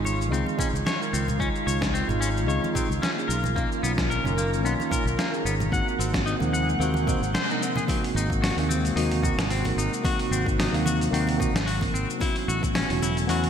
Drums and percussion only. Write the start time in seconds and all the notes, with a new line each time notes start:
0.05 high conga, shaker
0.21 shaker
0.34 shaker
0.46 high conga, shaker
0.59 kick, low conga, shaker
0.75 shaker
0.86 snare, high conga, shaker
1.02 shaker
1.14 shaker
1.28 high conga, low conga, shaker
1.40 kick, shaker
1.55 shaker
1.68 shaker
1.82 kick, snare, high conga, shaker
1.95 shaker
2.09 low conga, shaker
2.22 shaker
2.37 shaker
2.50 shaker
2.64 high conga, shaker
2.75 kick, low conga, shaker
2.92 shaker
3.03 snare, high conga, shaker
3.19 shaker
3.30 shaker
3.44 high conga, low conga, shaker
3.56 kick, shaker
3.72 shaker
3.84 shaker
3.98 kick, snare, high conga, shaker
4.11 shaker
4.25 low conga, shaker
4.38 high conga, shaker
4.54 shaker
4.66 shaker
4.80 high conga, shaker
4.91 kick, low conga, shaker
5.07 shaker
5.19 snare, high conga, shaker
5.34 shaker
5.46 shaker
5.60 high conga, low conga, shaker
5.72 kick, shaker
5.88 shaker
6.01 shaker
6.14 kick, snare, high conga, shaker
6.27 shaker
6.40 low conga, shaker
6.54 shaker
6.69 shaker
6.81 shaker
6.94 high conga, shaker
7.07 kick, low conga, shaker
7.23 shaker
7.34 snare, high conga, shaker
7.50 shaker
7.63 shaker
7.76 high conga, low conga, shaker
7.88 kick, open hi-hat, high conga, shaker
8.04 open hi-hat
8.17 shaker
8.30 kick, high conga, shaker
8.44 snare, open hi-hat, shaker
8.58 open hi-hat
8.70 high conga, shaker
8.85 open hi-hat, shaker
8.97 open hi-hat, shaker
9.11 open hi-hat, high conga
9.23 kick, low conga, shaker
9.39 snare, open hi-hat, shaker
9.50 open hi-hat, shaker
9.65 open hi-hat, high conga
9.79 shaker
9.93 shaker
10.04 kick, open hi-hat, high conga, shaker
10.19 open hi-hat
10.33 shaker
10.46 kick, high conga, shaker
10.60 snare, open hi-hat, shaker
10.74 open hi-hat
10.86 high conga, shaker
11.01 open hi-hat, shaker
11.14 open hi-hat, shaker
11.27 open hi-hat, high conga
11.40 kick, low conga, shaker
11.56 snare, open hi-hat, shaker
11.68 open hi-hat, shaker
11.81 kick, open hi-hat, high conga
11.95 shaker
12.10 shaker
12.21 kick, open hi-hat, high conga, shaker
12.36 open hi-hat
12.49 shaker
12.63 kick, high conga, shaker
12.75 snare, open hi-hat, shaker
12.90 open hi-hat
13.02 high conga, shaker
13.17 open hi-hat, shaker
13.29 open hi-hat, shaker
13.44 open hi-hat, high conga